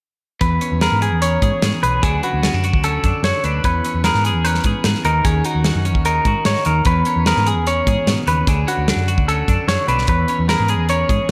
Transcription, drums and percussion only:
0.41 kick, closed hi-hat
0.61 closed hi-hat
0.81 snare, closed hi-hat
1.02 closed hi-hat
1.22 closed hi-hat
1.42 kick, closed hi-hat
1.62 snare, closed hi-hat
1.83 closed hi-hat
2.03 kick, closed hi-hat
2.23 closed hi-hat
2.43 snare, closed hi-hat
2.64 closed hi-hat
2.73 kick
2.84 closed hi-hat
3.04 kick, closed hi-hat
3.24 snare, closed hi-hat
3.44 closed hi-hat
3.64 kick, closed hi-hat
3.85 closed hi-hat
4.04 snare, closed hi-hat
4.14 snare
4.25 closed hi-hat
4.45 closed hi-hat
4.55 snare
4.64 kick, closed hi-hat
4.84 snare, closed hi-hat
4.95 snare
5.05 closed hi-hat
5.25 kick, closed hi-hat
5.44 closed hi-hat
5.64 snare, closed hi-hat
5.85 closed hi-hat
5.95 kick
6.05 closed hi-hat
6.25 kick, closed hi-hat
6.45 snare, closed hi-hat
6.56 snare
6.65 closed hi-hat
6.85 kick, closed hi-hat
7.05 closed hi-hat
7.26 snare, closed hi-hat
7.36 snare
7.46 closed hi-hat
7.67 closed hi-hat
7.87 kick, closed hi-hat
8.07 snare, closed hi-hat
8.27 closed hi-hat
8.47 kick, closed hi-hat
8.68 closed hi-hat
8.88 snare, closed hi-hat
9.08 closed hi-hat
9.18 kick
9.29 closed hi-hat
9.48 kick, closed hi-hat
9.69 snare, closed hi-hat
9.88 closed hi-hat
9.98 snare
10.07 kick, closed hi-hat
10.28 closed hi-hat
10.49 snare, closed hi-hat
10.68 closed hi-hat
10.89 closed hi-hat
11.09 kick, closed hi-hat

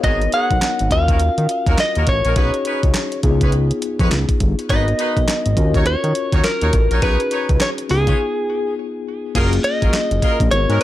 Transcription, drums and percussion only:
0.04 kick, closed hi-hat
0.22 closed hi-hat
0.32 closed hi-hat
0.51 kick, closed hi-hat
0.62 snare, clap, closed hi-hat
0.79 closed hi-hat
0.91 kick, closed hi-hat
1.08 kick, closed hi-hat
1.20 closed hi-hat
1.38 closed hi-hat
1.49 closed hi-hat
1.67 kick, closed hi-hat
1.78 snare, clap, closed hi-hat
1.95 closed hi-hat
2.07 kick, closed hi-hat
2.25 closed hi-hat
2.36 kick, closed hi-hat
2.54 closed hi-hat
2.65 closed hi-hat
2.83 kick, closed hi-hat
2.94 snare, clap, closed hi-hat
3.12 closed hi-hat
3.23 kick, closed hi-hat
3.41 kick, closed hi-hat
3.52 closed hi-hat
3.71 closed hi-hat
3.82 closed hi-hat
3.99 kick, closed hi-hat
4.11 snare, clap, closed hi-hat
4.29 kick, closed hi-hat
4.40 kick, closed hi-hat
4.59 closed hi-hat
4.70 kick, closed hi-hat
4.88 closed hi-hat
4.99 closed hi-hat
5.17 kick, closed hi-hat
5.28 snare, clap, closed hi-hat
5.46 closed hi-hat
5.57 kick, closed hi-hat
5.74 kick, closed hi-hat
5.86 closed hi-hat
6.04 closed hi-hat
6.15 closed hi-hat
6.33 kick, closed hi-hat
6.44 snare, clap, closed hi-hat
6.61 closed hi-hat
6.73 kick, closed hi-hat
6.91 closed hi-hat
7.02 kick, closed hi-hat
7.20 closed hi-hat
7.31 closed hi-hat
7.49 kick, closed hi-hat
7.60 snare, clap, closed hi-hat
7.78 closed hi-hat
7.89 open hi-hat
8.07 kick, closed hi-hat
9.35 kick, closed hi-hat, crash
9.53 closed hi-hat
9.64 closed hi-hat
9.82 kick, closed hi-hat
9.93 snare, clap, closed hi-hat
10.11 closed hi-hat
10.22 kick, closed hi-hat
10.40 kick, closed hi-hat
10.52 closed hi-hat
10.70 closed hi-hat

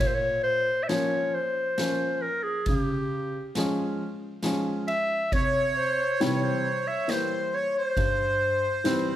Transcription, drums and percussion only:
0.00 kick, ride
0.89 snare, ride
1.78 snare, ride
2.66 kick, ride
3.55 snare, ride
4.43 snare, ride
4.88 ride
5.32 kick, ride
6.21 snare, ride
7.09 snare, ride
7.97 kick, ride
8.85 snare, ride

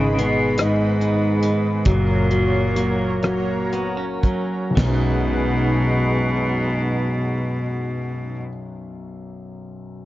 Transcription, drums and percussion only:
0.19 closed hi-hat
0.58 cross-stick, closed hi-hat
1.01 closed hi-hat
1.43 closed hi-hat
1.85 kick, closed hi-hat
2.31 closed hi-hat
2.76 closed hi-hat
3.23 cross-stick, closed hi-hat
3.73 cross-stick, closed hi-hat
4.23 kick, closed hi-hat
4.77 kick, snare, crash

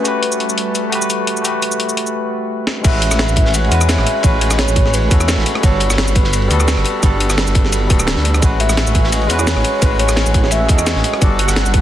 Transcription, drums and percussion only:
0.05 closed hi-hat, cabasa
0.23 closed hi-hat
0.32 cabasa
0.40 closed hi-hat
0.49 cabasa
0.58 closed hi-hat
0.75 closed hi-hat, cabasa
0.92 closed hi-hat
1.02 cabasa
1.10 closed hi-hat, cabasa
1.27 closed hi-hat
1.37 cabasa
1.45 closed hi-hat, cabasa
1.62 closed hi-hat, cabasa
1.72 cabasa
1.80 closed hi-hat
1.89 cabasa
1.97 closed hi-hat
2.07 cabasa
2.67 snare
2.84 kick, closed hi-hat, crash, ride, cabasa
3.02 closed hi-hat, ride
3.11 cross-stick, snare, cabasa
3.19 snare, closed hi-hat, ride
3.29 cabasa
3.36 kick, closed hi-hat, ride
3.45 snare
3.54 closed hi-hat, ride, cabasa
3.64 ride
3.72 closed hi-hat, ride, cabasa
3.81 cross-stick, cabasa
3.89 snare, closed hi-hat, ride, cabasa
3.98 cross-stick, snare
4.06 closed hi-hat, ride
4.23 kick, closed hi-hat, ride, cabasa
4.41 closed hi-hat, ride
4.49 cross-stick, snare, cabasa
4.58 snare, closed hi-hat, ride
4.68 cabasa
4.76 kick, closed hi-hat, ride
4.86 snare
4.94 closed hi-hat, ride, cabasa
5.11 kick, closed hi-hat, ride, cabasa
5.20 cross-stick, cabasa
5.28 snare, closed hi-hat, ride, cabasa
5.38 snare
5.46 closed hi-hat, ride
5.55 cross-stick, ride
5.63 kick, closed hi-hat, ride, cabasa
5.80 closed hi-hat, ride
5.90 cross-stick, snare, cabasa
5.98 snare, closed hi-hat, ride
6.08 cabasa
6.15 kick, closed hi-hat, ride
6.24 snare
6.33 closed hi-hat, ride, cabasa
6.42 ride
6.51 closed hi-hat, ride, cabasa
6.60 cross-stick, cabasa
6.68 snare, closed hi-hat, ride, cabasa
6.77 cross-stick, snare
6.84 closed hi-hat, ride
7.03 kick, closed hi-hat, ride, cabasa
7.20 closed hi-hat, ride
7.29 cross-stick, snare, cabasa
7.37 snare, closed hi-hat, ride
7.47 cabasa
7.55 kick, closed hi-hat, ride
7.65 snare
7.72 closed hi-hat, ride, cabasa
7.90 kick, closed hi-hat, ride, cabasa
7.99 cross-stick, cabasa
8.07 snare, closed hi-hat, ride, cabasa
8.17 snare
8.25 closed hi-hat, ride
8.34 cross-stick, cabasa
8.42 kick, closed hi-hat, ride, cabasa
8.60 closed hi-hat, ride
8.69 cross-stick, snare, cabasa
8.77 snare, closed hi-hat, ride
8.87 cabasa
8.95 kick, closed hi-hat, ride
9.04 snare
9.12 closed hi-hat, ride, cabasa
9.21 ride
9.30 closed hi-hat, ride, cabasa
9.39 cross-stick, cabasa
9.47 snare, closed hi-hat, ride, cabasa
9.56 cross-stick, snare
9.64 closed hi-hat, ride
9.82 kick, closed hi-hat, ride, cabasa
9.99 closed hi-hat, ride
10.09 cross-stick, snare, cabasa
10.16 snare, closed hi-hat, ride
10.26 cabasa
10.34 kick, closed hi-hat, ride
10.44 snare
10.51 closed hi-hat, ride, cabasa
10.68 kick, closed hi-hat, ride, cabasa
10.79 cross-stick, cabasa
10.86 snare, closed hi-hat, ride, cabasa
10.96 snare
11.04 closed hi-hat, ride
11.13 cross-stick, ride
11.22 kick, closed hi-hat, ride, cabasa
11.39 closed hi-hat, ride
11.48 cross-stick, snare, cabasa
11.56 snare, closed hi-hat, ride
11.66 cabasa
11.74 kick, closed hi-hat, ride

